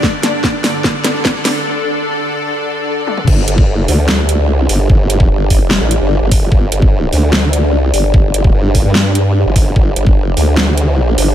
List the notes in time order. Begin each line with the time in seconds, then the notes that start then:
Already playing: G2 D3 D4 D5
0.03 A4, kick, snare
0.23 snare, closed hi-hat
0.44 kick, snare
0.64 snare, open hi-hat
0.84 kick, snare
1.04 snare, closed hi-hat
1.25 kick, snare
1.45 snare, open hi-hat
3.07 high tom
3.17 mid tom
3.27 G1 D4 G4 D5, kick, crash
3.48 G1, closed hi-hat
3.58 kick
3.88 D2, open hi-hat
4.09 snare
4.29 closed hi-hat
4.44 C#2
4.69 G1, open hi-hat
4.90 G1, kick
5.10 closed hi-hat
5.20 kick
5.30 G1
5.50 kick, open hi-hat
5.61 F1
5.71 snare
5.81 A1
5.91 closed hi-hat
6.01 G1
6.21 G1
6.31 kick, open hi-hat
6.42 G1
6.52 G1, kick
6.72 G1, closed hi-hat
6.82 kick
7.13 D2, open hi-hat
7.33 snare
7.53 closed hi-hat
7.69 C#2
7.94 G1, open hi-hat
8.14 G1, kick
8.34 closed hi-hat
8.44 kick
8.54 G1
8.75 kick, open hi-hat
8.85 G2
8.95 snare
9.15 closed hi-hat
9.46 G1
9.56 kick, open hi-hat
9.76 G1 C5, kick
9.96 G1, closed hi-hat
10.07 kick
10.37 D2, open hi-hat
10.57 snare
10.78 closed hi-hat
11.18 G1, open hi-hat